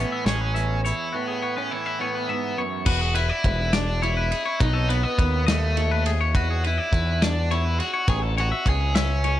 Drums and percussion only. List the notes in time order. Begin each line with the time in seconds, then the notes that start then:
0.26 snare, closed hi-hat
0.56 closed hi-hat
0.85 closed hi-hat
2.86 kick, crash
3.15 ride
3.44 kick, ride
3.73 snare, ride
4.03 ride
4.32 ride
4.60 kick, ride
4.90 ride
5.19 kick, ride
5.48 snare, ride
5.77 ride
6.06 ride
6.35 kick, ride
6.64 ride
6.93 kick, ride
7.22 snare, ride
7.51 ride
7.80 ride
8.08 kick, ride
8.38 ride
8.66 kick, ride
8.95 snare, ride
9.24 ride